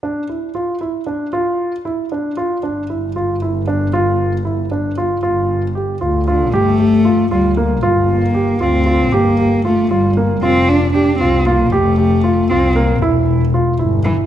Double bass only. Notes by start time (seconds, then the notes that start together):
2.64 G1
5.23 G1
6.01 D2
6.52 G1
7.31 D2
7.83 G1
8.61 D2
9.12 G1
9.90 G1
10.42 F1
11.20 C2
11.71 F1
12.50 C2
13.02 E1
13.79 G1